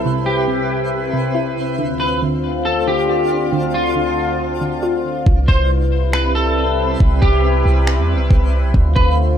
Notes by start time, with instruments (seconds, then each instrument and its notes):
Already playing: analog synth pad C2 C3 E4 B4, synth texture C4 B4 E5, synth pluck E4
0.05 synth pluck C3
0.26 clean electric guitar G4
0.48 synth pluck C3
1.13 synth pluck C3
1.35 synth pluck E4
1.78 analog synth pad D2 D3 C4 F4, synth pluck D3, synth texture D4 C5 F5
2.00 clean electric guitar B4
2.22 synth pluck D3
2.65 clean electric guitar A4
2.87 synth pluck D3, clean electric guitar G4
3.09 synth pluck F4
3.52 synth pluck D3
3.74 clean electric guitar F4
3.96 synth pluck D3
4.61 synth pluck D3
4.83 synth pluck F4
5.26 808-style bass C2, analog synth pad C3 G3 E4 B4, synth texture C4 B4 E5, kick
5.48 808-style bass C2, clean electric guitar C5, kick
6.13 clean electric guitar B4, finger snap
6.35 clean electric guitar A4
7.00 808-style bass C2, kick
7.22 808-style bass C2, clean electric guitar G4, kick
7.66 808-style bass C2
7.87 finger snap
7.98 808-style bass E2
8.14 808-style bass C2
8.31 808-style bass C2, kick
8.63 808-style bass B1
8.74 808-style bass D2, analog synth pad D3 A3 C4 F4, synth texture D4 C5 F5, kick
8.96 808-style bass D2, clean electric guitar B4, kick